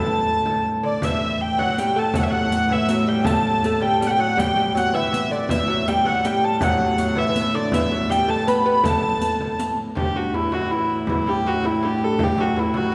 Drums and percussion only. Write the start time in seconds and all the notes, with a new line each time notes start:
0.09 frame drum
0.46 frame drum
0.84 frame drum
1.02 riq, frame drum
1.40 frame drum
1.59 frame drum
1.78 riq
2.14 riq, frame drum
2.51 riq, frame drum
2.69 frame drum
2.89 riq
3.25 riq, frame drum
3.63 riq, frame drum
3.81 frame drum
4.02 riq
4.38 riq, frame drum
4.77 riq
4.94 frame drum
5.12 riq, frame drum
5.33 riq
5.49 riq, frame drum
5.87 riq, frame drum
6.05 frame drum
6.25 riq
6.61 riq, frame drum
6.97 riq, frame drum
7.15 frame drum
7.36 riq
7.72 riq, frame drum
8.10 riq, frame drum
8.27 frame drum
8.48 riq
8.84 riq, frame drum
9.21 riq, frame drum
9.41 frame drum
9.59 riq, frame drum
9.97 frame drum
10.16 frame drum
10.52 frame drum
10.71 frame drum
10.89 frame drum
11.07 frame drum
11.27 frame drum
11.64 frame drum
11.83 frame drum
12.01 frame drum
12.19 frame drum
12.37 frame drum
12.74 frame drum